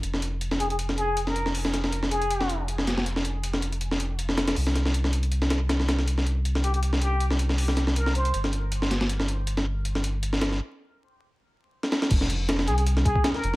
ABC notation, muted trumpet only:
X:1
M:4/4
L:1/16
Q:"Swing 16ths" 1/4=159
K:Fm
V:1 name="Muted trumpet"
z6 A A z2 A2 z B2 z | z6 A6 z4 | z16 | z16 |
z6 G G z2 G2 z4 | z4 B2 c2 z8 | z16 | z16 |
z6 A A z2 A2 z B2 z |]